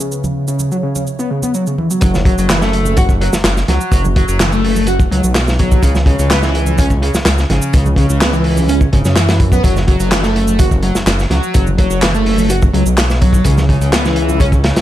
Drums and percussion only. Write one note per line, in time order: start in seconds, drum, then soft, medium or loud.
0.00 shaker medium
0.12 shaker soft
0.24 high conga medium
0.24 low conga medium
0.24 shaker soft
0.48 shaker medium
0.59 high conga medium
0.59 shaker medium
0.72 shaker soft
0.96 high conga medium
0.96 shaker medium
1.07 shaker soft
1.19 shaker soft
1.43 high conga medium
1.43 shaker medium
1.54 shaker soft
1.67 shaker soft
1.78 high conga medium
1.91 shaker medium
2.01 kick loud
2.01 closed hi-hat medium
2.01 shaker medium
2.14 snare soft
2.14 high conga medium
2.14 low conga medium
2.14 shaker soft
2.25 kick loud
2.25 closed hi-hat medium
2.38 closed hi-hat soft
2.38 shaker medium
2.49 snare loud
2.49 clap loud
2.49 closed hi-hat medium
2.49 high conga medium
2.49 shaker medium
2.62 snare soft
2.62 shaker soft
2.73 closed hi-hat medium
2.85 high conga medium
2.85 shaker medium
2.97 kick loud
2.97 closed hi-hat medium
2.97 shaker medium
3.09 kick loud
3.09 shaker soft
3.21 closed hi-hat medium
3.33 snare medium
3.33 high conga medium
3.33 shaker medium
3.44 snare loud
3.44 clap loud
3.44 closed hi-hat medium
3.44 shaker medium
3.57 snare soft
3.57 shaker soft
3.68 snare soft
3.68 closed hi-hat medium
3.68 high conga medium
3.81 shaker medium
3.92 kick loud
3.92 closed hi-hat medium
3.92 shaker medium
4.05 high conga loud
4.05 low conga medium
4.05 shaker soft
4.16 kick loud
4.16 closed hi-hat medium
4.28 shaker medium
4.40 snare loud
4.40 clap loud
4.40 closed hi-hat medium
4.40 high conga medium
4.40 shaker medium
4.52 shaker soft
4.64 open hi-hat medium
4.76 high conga medium
4.76 shaker medium
4.87 closed hi-hat medium
4.87 shaker medium
5.00 kick medium
5.00 shaker soft
5.12 closed hi-hat medium
5.24 high conga medium
5.24 shaker medium
5.35 snare loud
5.35 clap loud
5.35 closed hi-hat medium
5.35 shaker medium
5.48 snare medium
5.48 shaker soft
5.59 kick loud
5.59 closed hi-hat medium
5.59 high conga medium
5.72 kick loud
5.72 shaker medium
5.83 kick loud
5.83 closed hi-hat medium
5.83 shaker medium
5.95 snare soft
5.95 high conga loud
5.95 low conga medium
5.95 shaker soft
6.06 kick loud
6.06 closed hi-hat medium
6.19 closed hi-hat soft
6.19 shaker medium
6.30 snare loud
6.30 clap loud
6.30 closed hi-hat loud
6.30 high conga medium
6.30 shaker medium
6.43 snare soft
6.43 shaker soft
6.55 closed hi-hat medium
6.66 high conga medium
6.66 shaker medium
6.78 kick loud
6.78 closed hi-hat medium
6.78 shaker medium
6.90 kick medium
6.90 shaker soft
7.03 closed hi-hat medium
7.14 snare medium
7.14 high conga medium
7.14 shaker medium
7.25 snare loud
7.25 clap loud
7.25 closed hi-hat medium
7.25 shaker medium
7.38 snare soft
7.38 shaker soft
7.50 snare soft
7.50 closed hi-hat medium
7.50 high conga loud
7.62 shaker medium
7.73 kick loud
7.73 closed hi-hat medium
7.73 shaker medium
7.86 high conga medium
7.86 low conga medium
7.86 shaker soft
7.96 kick medium
7.96 closed hi-hat medium
8.10 shaker medium
8.21 snare loud
8.21 clap loud
8.21 closed hi-hat medium
8.21 high conga medium
8.21 shaker medium
8.33 shaker soft
8.44 open hi-hat medium
8.57 high conga medium
8.57 shaker medium
8.69 closed hi-hat medium
8.69 shaker medium
8.81 kick loud
8.81 shaker soft
8.93 kick loud
8.93 closed hi-hat medium
9.05 snare soft
9.05 high conga medium
9.05 shaker medium
9.16 snare loud
9.16 clap loud
9.16 closed hi-hat medium
9.16 shaker soft
9.28 snare medium
9.28 closed hi-hat medium
9.28 shaker soft
9.40 kick loud
9.40 closed hi-hat medium
9.40 high conga medium
9.52 kick medium
9.52 shaker medium
9.64 kick loud
9.64 closed hi-hat medium
9.64 shaker soft
9.76 snare soft
9.76 high conga medium
9.76 low conga medium
9.76 shaker soft
9.88 kick medium
9.88 closed hi-hat medium
10.00 closed hi-hat soft
10.00 shaker medium
10.11 snare loud
10.11 clap loud
10.11 closed hi-hat medium
10.11 high conga medium
10.11 shaker medium
10.23 snare soft
10.23 shaker soft
10.36 closed hi-hat medium
10.48 high conga medium
10.48 shaker medium
10.59 kick loud
10.59 closed hi-hat medium
10.59 shaker soft
10.71 kick medium
10.71 shaker soft
10.83 closed hi-hat medium
10.95 snare soft
10.95 high conga medium
10.95 shaker medium
11.07 snare loud
11.07 clap loud
11.07 closed hi-hat medium
11.07 shaker soft
11.19 snare soft
11.19 shaker soft
11.30 snare soft
11.30 closed hi-hat medium
11.30 high conga medium
11.43 shaker medium
11.54 kick loud
11.54 closed hi-hat medium
11.54 shaker soft
11.67 high conga medium
11.67 low conga medium
11.67 shaker soft
11.78 kick medium
11.78 closed hi-hat medium
11.91 shaker medium
12.02 snare loud
12.02 clap loud
12.02 closed hi-hat medium
12.02 high conga medium
12.02 shaker soft
12.14 shaker soft
12.26 open hi-hat medium
12.38 high conga medium
12.38 shaker medium
12.50 closed hi-hat medium
12.50 shaker medium
12.62 kick loud
12.62 shaker soft
12.74 closed hi-hat medium
12.86 high conga medium
12.86 shaker medium
12.97 snare loud
12.97 clap loud
12.97 closed hi-hat medium
12.97 shaker medium
13.10 snare soft
13.10 shaker soft
13.22 kick loud
13.22 closed hi-hat medium
13.22 high conga medium
13.33 kick medium
13.33 shaker medium
13.44 kick loud
13.44 closed hi-hat medium
13.44 shaker medium
13.58 snare soft
13.58 high conga loud
13.58 low conga medium
13.58 shaker soft
13.69 kick medium
13.69 closed hi-hat medium
13.82 closed hi-hat soft
13.82 shaker medium
13.92 snare loud
13.92 clap loud
13.92 closed hi-hat medium
13.92 high conga medium
13.92 shaker medium
14.05 snare soft
14.05 shaker soft
14.16 closed hi-hat medium
14.29 high conga medium
14.29 shaker medium
14.40 kick loud
14.40 closed hi-hat medium
14.40 shaker medium
14.52 kick medium
14.52 shaker soft
14.64 snare loud
14.64 closed hi-hat medium
14.76 snare loud
14.76 closed hi-hat medium
14.76 high conga medium
14.76 shaker medium